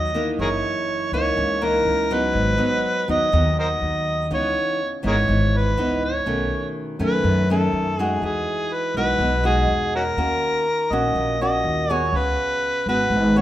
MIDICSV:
0, 0, Header, 1, 4, 480
1, 0, Start_track
1, 0, Key_signature, 5, "minor"
1, 0, Tempo, 489396
1, 380, Time_signature, 4, 2, 24, 8
1, 13157, End_track
2, 0, Start_track
2, 0, Title_t, "Harmonica"
2, 0, Program_c, 0, 22
2, 0, Note_on_c, 0, 75, 96
2, 350, Note_off_c, 0, 75, 0
2, 401, Note_on_c, 0, 68, 68
2, 401, Note_on_c, 0, 70, 68
2, 401, Note_on_c, 0, 73, 97
2, 472, Note_off_c, 0, 68, 0
2, 476, Note_off_c, 0, 70, 0
2, 1071, Note_off_c, 0, 73, 0
2, 1115, Note_on_c, 0, 73, 97
2, 1604, Note_on_c, 0, 70, 84
2, 1619, Note_off_c, 0, 73, 0
2, 2096, Note_on_c, 0, 71, 89
2, 2111, Note_off_c, 0, 70, 0
2, 3038, Note_off_c, 0, 71, 0
2, 3048, Note_on_c, 0, 75, 98
2, 3481, Note_off_c, 0, 75, 0
2, 3525, Note_on_c, 0, 70, 58
2, 3525, Note_on_c, 0, 72, 58
2, 3525, Note_on_c, 0, 75, 83
2, 3598, Note_off_c, 0, 70, 0
2, 3607, Note_off_c, 0, 72, 0
2, 4193, Note_off_c, 0, 75, 0
2, 4261, Note_on_c, 0, 73, 93
2, 4808, Note_off_c, 0, 73, 0
2, 4974, Note_on_c, 0, 68, 66
2, 4974, Note_on_c, 0, 70, 66
2, 4974, Note_on_c, 0, 73, 94
2, 5054, Note_off_c, 0, 68, 0
2, 5062, Note_off_c, 0, 70, 0
2, 5461, Note_on_c, 0, 71, 77
2, 5476, Note_off_c, 0, 73, 0
2, 5920, Note_off_c, 0, 71, 0
2, 5930, Note_on_c, 0, 73, 77
2, 6596, Note_off_c, 0, 73, 0
2, 6900, Note_on_c, 0, 71, 80
2, 7328, Note_off_c, 0, 71, 0
2, 7372, Note_on_c, 0, 69, 74
2, 7833, Note_off_c, 0, 69, 0
2, 7833, Note_on_c, 0, 68, 74
2, 8087, Note_off_c, 0, 68, 0
2, 8087, Note_on_c, 0, 68, 72
2, 8564, Note_on_c, 0, 71, 69
2, 8578, Note_off_c, 0, 68, 0
2, 8791, Note_off_c, 0, 71, 0
2, 8798, Note_on_c, 0, 71, 92
2, 9235, Note_off_c, 0, 71, 0
2, 9277, Note_on_c, 0, 68, 80
2, 9715, Note_off_c, 0, 68, 0
2, 9762, Note_on_c, 0, 61, 62
2, 9762, Note_on_c, 0, 66, 62
2, 9762, Note_on_c, 0, 70, 89
2, 9827, Note_off_c, 0, 61, 0
2, 9841, Note_off_c, 0, 66, 0
2, 10718, Note_on_c, 0, 75, 92
2, 10732, Note_off_c, 0, 70, 0
2, 11187, Note_off_c, 0, 75, 0
2, 11198, Note_on_c, 0, 75, 88
2, 11699, Note_off_c, 0, 75, 0
2, 11699, Note_on_c, 0, 73, 88
2, 11931, Note_on_c, 0, 71, 94
2, 11946, Note_off_c, 0, 73, 0
2, 12633, Note_off_c, 0, 71, 0
2, 12640, Note_on_c, 0, 71, 87
2, 13119, Note_on_c, 0, 73, 78
2, 13134, Note_off_c, 0, 71, 0
2, 13157, Note_off_c, 0, 73, 0
2, 13157, End_track
3, 0, Start_track
3, 0, Title_t, "Nylon-string guitar"
3, 0, Program_c, 1, 24
3, 0, Note_on_c, 1, 51, 45
3, 0, Note_on_c, 1, 59, 46
3, 0, Note_on_c, 1, 63, 58
3, 105, Note_off_c, 1, 59, 0
3, 108, Note_off_c, 1, 63, 0
3, 141, Note_on_c, 1, 52, 56
3, 147, Note_on_c, 1, 58, 52
3, 156, Note_on_c, 1, 63, 64
3, 357, Note_off_c, 1, 51, 0
3, 389, Note_on_c, 1, 42, 49
3, 1062, Note_off_c, 1, 52, 0
3, 1065, Note_off_c, 1, 58, 0
3, 1069, Note_off_c, 1, 63, 0
3, 1110, Note_on_c, 1, 52, 46
3, 1116, Note_on_c, 1, 58, 52
3, 1120, Note_on_c, 1, 63, 51
3, 1321, Note_off_c, 1, 42, 0
3, 1348, Note_on_c, 1, 49, 55
3, 1547, Note_off_c, 1, 52, 0
3, 1548, Note_off_c, 1, 58, 0
3, 1551, Note_off_c, 1, 63, 0
3, 1584, Note_on_c, 1, 52, 56
3, 1587, Note_on_c, 1, 58, 60
3, 1594, Note_on_c, 1, 63, 53
3, 2023, Note_off_c, 1, 52, 0
3, 2026, Note_off_c, 1, 58, 0
3, 2028, Note_off_c, 1, 63, 0
3, 2066, Note_on_c, 1, 54, 61
3, 2068, Note_on_c, 1, 59, 52
3, 2075, Note_on_c, 1, 63, 60
3, 2280, Note_off_c, 1, 49, 0
3, 2285, Note_on_c, 1, 44, 49
3, 2516, Note_off_c, 1, 59, 0
3, 2518, Note_off_c, 1, 54, 0
3, 2525, Note_off_c, 1, 63, 0
3, 2529, Note_on_c, 1, 54, 47
3, 2531, Note_on_c, 1, 59, 48
3, 2537, Note_on_c, 1, 63, 48
3, 2976, Note_off_c, 1, 54, 0
3, 2976, Note_off_c, 1, 59, 0
3, 2980, Note_off_c, 1, 63, 0
3, 3021, Note_on_c, 1, 54, 48
3, 3029, Note_on_c, 1, 59, 42
3, 3034, Note_on_c, 1, 63, 57
3, 3223, Note_off_c, 1, 54, 0
3, 3225, Note_off_c, 1, 59, 0
3, 3225, Note_off_c, 1, 63, 0
3, 3229, Note_off_c, 1, 44, 0
3, 3257, Note_on_c, 1, 51, 52
3, 3263, Note_on_c, 1, 54, 49
3, 3266, Note_on_c, 1, 63, 45
3, 3270, Note_on_c, 1, 59, 47
3, 4182, Note_off_c, 1, 63, 0
3, 4183, Note_off_c, 1, 54, 0
3, 4186, Note_off_c, 1, 59, 0
3, 4196, Note_off_c, 1, 51, 0
3, 4222, Note_on_c, 1, 49, 42
3, 4224, Note_on_c, 1, 52, 44
3, 4227, Note_on_c, 1, 59, 44
3, 4235, Note_on_c, 1, 63, 50
3, 4699, Note_off_c, 1, 52, 0
3, 4701, Note_off_c, 1, 59, 0
3, 4703, Note_off_c, 1, 63, 0
3, 4932, Note_on_c, 1, 52, 51
3, 4937, Note_on_c, 1, 59, 54
3, 4942, Note_on_c, 1, 63, 58
3, 5157, Note_off_c, 1, 49, 0
3, 5180, Note_on_c, 1, 44, 50
3, 5617, Note_off_c, 1, 52, 0
3, 5620, Note_off_c, 1, 59, 0
3, 5622, Note_off_c, 1, 63, 0
3, 5665, Note_on_c, 1, 52, 52
3, 5674, Note_on_c, 1, 59, 47
3, 5677, Note_on_c, 1, 63, 57
3, 5985, Note_off_c, 1, 52, 0
3, 5990, Note_off_c, 1, 59, 0
3, 5990, Note_off_c, 1, 63, 0
3, 6116, Note_off_c, 1, 44, 0
3, 6137, Note_on_c, 1, 47, 43
3, 6144, Note_on_c, 1, 51, 43
3, 6149, Note_on_c, 1, 57, 49
3, 6149, Note_on_c, 1, 61, 50
3, 6823, Note_off_c, 1, 51, 0
3, 6825, Note_off_c, 1, 57, 0
3, 6826, Note_off_c, 1, 61, 0
3, 6861, Note_on_c, 1, 51, 53
3, 6867, Note_on_c, 1, 57, 53
3, 6871, Note_on_c, 1, 61, 59
3, 7074, Note_off_c, 1, 47, 0
3, 7106, Note_on_c, 1, 42, 47
3, 7302, Note_off_c, 1, 51, 0
3, 7303, Note_off_c, 1, 57, 0
3, 7307, Note_off_c, 1, 61, 0
3, 7354, Note_on_c, 1, 51, 48
3, 7358, Note_on_c, 1, 57, 51
3, 7367, Note_on_c, 1, 61, 62
3, 7788, Note_off_c, 1, 51, 0
3, 7791, Note_off_c, 1, 57, 0
3, 7793, Note_off_c, 1, 61, 0
3, 7838, Note_on_c, 1, 56, 51
3, 7842, Note_on_c, 1, 63, 57
3, 7848, Note_on_c, 1, 66, 60
3, 8038, Note_off_c, 1, 42, 0
3, 8073, Note_on_c, 1, 52, 43
3, 8750, Note_off_c, 1, 56, 0
3, 8751, Note_off_c, 1, 63, 0
3, 8755, Note_off_c, 1, 66, 0
3, 8795, Note_on_c, 1, 56, 46
3, 8799, Note_on_c, 1, 63, 50
3, 8806, Note_on_c, 1, 66, 51
3, 9001, Note_off_c, 1, 52, 0
3, 9034, Note_on_c, 1, 47, 53
3, 9228, Note_off_c, 1, 56, 0
3, 9231, Note_off_c, 1, 63, 0
3, 9232, Note_off_c, 1, 66, 0
3, 9255, Note_on_c, 1, 56, 57
3, 9263, Note_on_c, 1, 63, 57
3, 9269, Note_on_c, 1, 66, 55
3, 9938, Note_off_c, 1, 56, 0
3, 9942, Note_off_c, 1, 63, 0
3, 9945, Note_off_c, 1, 66, 0
3, 9962, Note_off_c, 1, 47, 0
3, 9979, Note_on_c, 1, 51, 44
3, 9984, Note_on_c, 1, 58, 47
3, 9987, Note_on_c, 1, 61, 43
3, 9988, Note_on_c, 1, 66, 46
3, 10457, Note_off_c, 1, 61, 0
3, 10458, Note_off_c, 1, 58, 0
3, 10459, Note_off_c, 1, 66, 0
3, 10709, Note_on_c, 1, 58, 46
3, 10719, Note_on_c, 1, 61, 53
3, 10720, Note_on_c, 1, 66, 54
3, 10915, Note_off_c, 1, 51, 0
3, 10943, Note_on_c, 1, 46, 54
3, 11145, Note_off_c, 1, 58, 0
3, 11150, Note_off_c, 1, 61, 0
3, 11150, Note_off_c, 1, 66, 0
3, 11192, Note_on_c, 1, 58, 45
3, 11198, Note_on_c, 1, 61, 51
3, 11203, Note_on_c, 1, 66, 50
3, 11627, Note_off_c, 1, 58, 0
3, 11628, Note_off_c, 1, 61, 0
3, 11632, Note_off_c, 1, 66, 0
3, 11668, Note_on_c, 1, 59, 50
3, 11676, Note_on_c, 1, 66, 53
3, 11677, Note_on_c, 1, 68, 64
3, 11876, Note_off_c, 1, 46, 0
3, 11921, Note_on_c, 1, 49, 44
3, 12583, Note_off_c, 1, 59, 0
3, 12587, Note_off_c, 1, 68, 0
3, 12588, Note_off_c, 1, 66, 0
3, 12637, Note_on_c, 1, 66, 49
3, 12640, Note_on_c, 1, 59, 45
3, 12644, Note_on_c, 1, 68, 50
3, 12844, Note_off_c, 1, 49, 0
3, 12876, Note_on_c, 1, 44, 48
3, 13068, Note_off_c, 1, 66, 0
3, 13070, Note_off_c, 1, 59, 0
3, 13070, Note_off_c, 1, 68, 0
3, 13106, Note_on_c, 1, 59, 57
3, 13112, Note_on_c, 1, 66, 49
3, 13121, Note_on_c, 1, 68, 50
3, 13157, Note_off_c, 1, 44, 0
3, 13157, Note_off_c, 1, 59, 0
3, 13157, Note_off_c, 1, 66, 0
3, 13157, Note_off_c, 1, 68, 0
3, 13157, End_track
4, 0, Start_track
4, 0, Title_t, "Upright bass"
4, 0, Program_c, 2, 32
4, 0, Note_on_c, 2, 39, 74
4, 347, Note_off_c, 2, 39, 0
4, 378, Note_on_c, 2, 30, 76
4, 602, Note_off_c, 2, 30, 0
4, 1098, Note_on_c, 2, 37, 77
4, 1322, Note_off_c, 2, 37, 0
4, 1341, Note_on_c, 2, 37, 93
4, 1787, Note_off_c, 2, 37, 0
4, 1815, Note_on_c, 2, 37, 78
4, 2264, Note_off_c, 2, 37, 0
4, 2300, Note_on_c, 2, 32, 74
4, 2523, Note_off_c, 2, 32, 0
4, 3022, Note_on_c, 2, 39, 75
4, 3244, Note_off_c, 2, 39, 0
4, 3265, Note_on_c, 2, 39, 94
4, 3709, Note_off_c, 2, 39, 0
4, 3741, Note_on_c, 2, 39, 86
4, 4187, Note_off_c, 2, 39, 0
4, 4220, Note_on_c, 2, 37, 70
4, 4443, Note_off_c, 2, 37, 0
4, 4945, Note_on_c, 2, 32, 79
4, 5166, Note_off_c, 2, 32, 0
4, 5185, Note_on_c, 2, 32, 88
4, 5629, Note_off_c, 2, 32, 0
4, 5662, Note_on_c, 2, 37, 73
4, 6107, Note_off_c, 2, 37, 0
4, 6140, Note_on_c, 2, 35, 79
4, 6363, Note_off_c, 2, 35, 0
4, 6857, Note_on_c, 2, 42, 85
4, 7081, Note_off_c, 2, 42, 0
4, 7099, Note_on_c, 2, 42, 92
4, 7545, Note_off_c, 2, 42, 0
4, 7579, Note_on_c, 2, 42, 81
4, 8025, Note_off_c, 2, 42, 0
4, 8059, Note_on_c, 2, 40, 80
4, 8282, Note_off_c, 2, 40, 0
4, 8772, Note_on_c, 2, 35, 78
4, 8998, Note_off_c, 2, 35, 0
4, 9009, Note_on_c, 2, 35, 101
4, 9460, Note_off_c, 2, 35, 0
4, 9487, Note_on_c, 2, 40, 84
4, 9938, Note_off_c, 2, 40, 0
4, 9973, Note_on_c, 2, 39, 78
4, 10198, Note_off_c, 2, 39, 0
4, 10696, Note_on_c, 2, 34, 75
4, 10920, Note_off_c, 2, 34, 0
4, 10934, Note_on_c, 2, 34, 84
4, 11382, Note_off_c, 2, 34, 0
4, 11419, Note_on_c, 2, 39, 84
4, 11864, Note_off_c, 2, 39, 0
4, 11893, Note_on_c, 2, 37, 81
4, 12118, Note_off_c, 2, 37, 0
4, 12611, Note_on_c, 2, 32, 79
4, 12837, Note_off_c, 2, 32, 0
4, 12849, Note_on_c, 2, 32, 92
4, 13157, Note_off_c, 2, 32, 0
4, 13157, End_track
0, 0, End_of_file